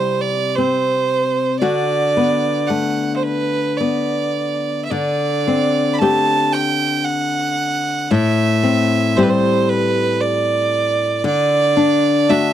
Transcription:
0.00 1.62 C3 medium
0.00 1.73 G3 medium
0.00 0.57 C4 medium
0.00 1.62 E4 medium
0.00 0.23 C5 medium
0.21 0.57 D5 medium
0.56 1.73 C4 soft
0.56 1.59 C5 medium
1.59 4.91 D3 medium
1.59 4.92 F#4 medium
1.59 2.69 D5 medium
2.17 3.79 B3 soft
2.67 6.01 A3 soft
2.67 3.15 F#5 medium
3.16 3.24 C5 soft
3.23 3.79 B4 medium
3.77 5.03 B3 soft
3.77 4.84 D5 medium
4.85 4.92 E5 medium
4.91 8.11 D3 medium
4.91 5.95 D5 medium
5.47 6.01 C4 soft
5.93 6.00 B5 medium
5.99 9.17 A3 soft
5.99 8.63 C4 soft
5.99 9.18 G4 medium
5.99 6.54 A5 medium
6.52 7.06 G5 medium
7.04 8.12 F#5 medium
8.10 11.24 A2 medium
8.10 9.18 E5 medium
8.63 9.17 C4 medium
9.17 11.36 G3 medium
9.17 11.36 C4 medium
9.17 11.36 G4 medium
9.17 9.24 C5 medium
9.23 9.32 B4 medium
9.30 9.71 C5 medium
9.69 10.22 B4 medium
10.21 11.25 D5 medium
11.24 12.53 D3 medium
11.24 12.32 D5 loud
11.77 12.29 D4 medium
12.29 12.53 A3 medium
12.29 12.53 D4 medium
12.29 12.53 F#4 medium
12.29 12.53 E5 medium

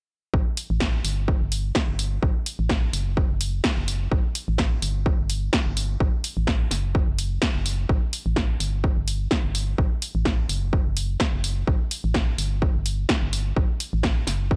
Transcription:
0.34 0.44 A1 medium
0.34 kick loud
0.57 open hi-hat loud
0.70 1.01 A1 loud
0.80 kick medium
0.80 snare loud
1.04 1.36 G1 medium
1.04 open hi-hat loud
1.28 kick loud
1.41 1.71 G1 medium
1.52 open hi-hat loud
1.75 kick loud
1.75 snare loud
1.88 2.19 G1 medium
1.99 open hi-hat medium
2.23 2.33 A1 loud
2.23 kick loud
2.46 open hi-hat loud
2.59 2.90 A1 medium
2.69 kick loud
2.69 snare loud
2.93 3.25 F#1 medium
2.93 open hi-hat loud
3.17 kick loud
3.30 3.60 F#1 medium
3.41 open hi-hat loud
3.64 kick loud
3.64 snare loud
3.77 4.08 F#1 medium
3.88 open hi-hat loud
4.12 4.22 A1 medium
4.12 kick loud
4.35 open hi-hat loud
4.48 4.79 A1 medium
4.58 kick loud
4.58 snare loud
4.82 5.14 G1 medium
4.82 open hi-hat loud
5.06 kick loud
5.19 5.49 G1 medium
5.30 open hi-hat loud
5.53 kick loud
5.53 snare loud
5.66 5.97 G1 medium
5.77 open hi-hat loud
6.00 6.10 A1 medium
6.00 kick loud
6.24 open hi-hat loud
6.37 6.67 A1 medium
6.47 kick loud
6.47 snare loud
6.71 7.03 F#1 medium
6.71 snare soft
6.71 open hi-hat loud
6.95 kick loud
7.08 7.38 F#1 medium
7.19 open hi-hat loud
7.42 kick loud
7.42 snare loud
7.55 7.86 F#1 medium
7.66 open hi-hat loud
7.89 7.99 A1 medium
7.89 kick loud
8.13 open hi-hat loud
8.26 8.56 A1 medium
8.36 kick loud
8.36 snare loud
8.60 8.92 G1 medium
8.60 open hi-hat loud
8.84 kick loud
8.97 9.27 G1 medium
9.08 open hi-hat loud
9.31 kick loud
9.31 snare loud
9.44 9.75 G1 medium
9.55 open hi-hat loud
9.78 9.88 A1 medium
9.78 kick loud
10.02 open hi-hat loud
10.15 10.45 A1 loud
10.25 kick medium
10.25 snare loud
10.49 10.81 F#1 medium
10.49 open hi-hat medium
10.73 kick loud
10.86 11.16 F#1 medium
10.97 open hi-hat loud
11.20 kick loud
11.20 snare loud
11.33 11.64 F#1 medium
11.44 open hi-hat medium
11.67 11.77 A1 medium
11.67 kick loud
11.91 open hi-hat loud
12.04 12.35 A1 medium
12.14 kick loud
12.14 snare loud
12.38 12.70 G1 medium
12.38 open hi-hat loud
12.62 kick loud
12.75 13.05 G1 medium
12.86 open hi-hat loud
13.09 kick loud
13.09 snare loud
13.22 13.53 G1 medium
13.33 open hi-hat medium
13.57 13.66 A1 medium
13.57 kick loud
13.80 open hi-hat loud
13.93 14.24 A1 medium
14.03 kick loud
14.03 snare loud
14.27 14.56 F#1 medium
14.27 snare soft
14.27 open hi-hat loud
14.51 kick loud

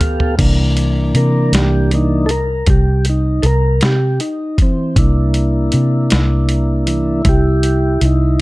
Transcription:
0.00 0.35 B3 medium
0.00 0.35 G4 medium
0.00 0.36 A4 medium
0.00 0.35 F5 medium
0.00 closed hi-hat medium
0.00 floor tom medium
0.20 floor tom medium
0.38 1.11 C2 medium
0.38 1.91 E3 soft
0.38 1.92 A#3 soft
0.38 1.92 D4 medium
0.38 kick loud
0.38 closed hi-hat medium
0.38 crash medium
0.77 closed hi-hat medium
1.14 1.50 C3 medium
1.14 1.53 A#4 medium
1.14 closed hi-hat medium
1.52 2.64 C2 medium
1.52 1.91 G4 medium
1.52 snare loud
1.52 closed hi-hat medium
1.91 2.27 E3 soft
1.91 2.27 A#3 soft
1.91 2.27 D4 soft
1.91 2.30 D#4 medium
1.91 closed hi-hat medium
2.26 2.31 A4 medium
2.26 closed hi-hat medium
2.31 2.67 A#4 medium
2.67 3.40 C2 medium
2.67 3.06 G4 medium
2.67 kick medium
2.67 closed hi-hat medium
3.05 closed hi-hat medium
3.09 3.45 D#4 medium
3.43 3.79 C2 medium
3.43 3.47 A4 medium
3.43 3.82 A#4 medium
3.43 closed hi-hat medium
3.81 4.18 C3 medium
3.81 snare loud
3.81 closed hi-hat medium
3.85 4.21 G4 medium
4.20 4.58 D#4 medium
4.20 closed hi-hat soft
4.58 4.96 E3 medium
4.58 kick medium
4.58 closed hi-hat medium
4.62 4.98 C4 medium
4.96 5.69 C2 medium
4.96 6.87 A#3 soft
4.96 6.88 D4 medium
4.96 8.41 E4 medium
4.96 kick loud
4.96 closed hi-hat medium
5.34 closed hi-hat medium
5.72 6.09 C3 medium
5.72 closed hi-hat medium
6.10 7.22 C2 medium
6.10 snare loud
6.10 closed hi-hat medium
6.49 closed hi-hat medium
6.87 7.22 E3 soft
6.87 7.22 A#3 soft
6.87 7.23 D4 medium
6.87 closed hi-hat medium
7.25 7.98 C2 loud
7.25 kick medium
7.25 closed hi-hat medium
7.29 8.01 G4 medium
7.63 closed hi-hat medium
8.01 8.37 C2 medium
8.01 8.41 D#4 medium
8.01 closed hi-hat medium

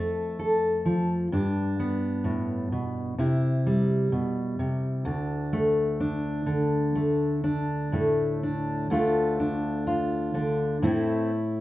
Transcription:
0.00 1.27 F2 medium
0.00 1.27 A3 soft
0.00 0.38 A4 medium
0.39 1.27 A4 medium
0.85 1.27 F3 medium
1.32 3.13 G2 medium
1.32 3.13 D4 soft
1.80 3.13 B3 medium
2.24 2.71 A2 medium
2.72 3.18 B2 medium
3.18 4.12 C3 medium
3.18 5.00 E4 medium
3.66 5.06 G3 medium
4.12 4.59 B2 medium
4.59 5.06 C3 medium
5.05 8.89 D2 medium
5.05 5.99 D4 soft
5.53 6.94 A3 medium
6.00 7.42 D4 medium
6.46 10.33 D3 medium
6.95 7.92 A3 medium
7.44 8.42 D4 soft
7.92 8.91 A2 medium
7.92 8.86 A3 soft
8.43 8.86 D4 soft
8.90 10.81 D2 medium
8.90 10.76 A3 soft
8.90 9.38 D4 medium
8.90 9.86 F4 medium
9.40 10.33 D4 medium
9.87 10.77 F4 medium
10.34 10.82 D3 medium
10.34 10.77 D4 soft
10.82 11.61 A2 medium
10.82 11.61 A3 soft
10.82 11.30 C4 medium
10.82 11.61 E4 medium

